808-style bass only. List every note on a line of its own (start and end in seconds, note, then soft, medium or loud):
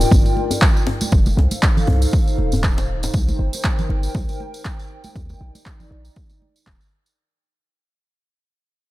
0.11 0.21 G1 loud
1.12 1.30 F1 loud
1.37 1.47 C2 loud
1.88 2.06 C2 loud
2.38 3.08 D#1 medium
3.14 3.32 C2 loud
3.39 3.49 G1 loud
3.89 4.08 G1 loud
4.15 4.24 C2 loud
5.16 5.34 D#2 loud
5.41 5.50 A#1 loud
5.91 6.09 A#1 medium
6.67 6.76 D#1 medium